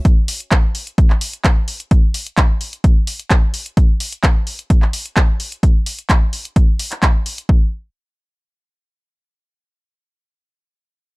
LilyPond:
\new DrumStaff \with { instrumentName = "Drums" } \drummode { \time 4/4 \tempo 4 = 129 <hh bd>8 hho16 hh16 <hc hh bd>8 hho16 hh16 <hh bd>16 hc16 hho16 hh16 <hc hh bd>8 hho16 hh16 | <hh bd>8 hho16 hh16 <hc hh bd>8 hho16 hh16 <hh bd>8 hho16 hh16 <hc hh bd>8 hho16 hh16 | <hh bd>8 hho16 hh16 <hc hh bd>8 hho16 hh16 <hh bd>16 hc16 hho16 hh16 <hc hh bd>8 hho16 hh16 | <hh bd>8 hho16 hh16 <hc hh bd>8 hho16 hh16 <hh bd>8 hho16 <hc hh>16 <hc hh bd>8 hho16 hh16 |
bd4 r4 r4 r4 | r4 r4 r4 r4 | }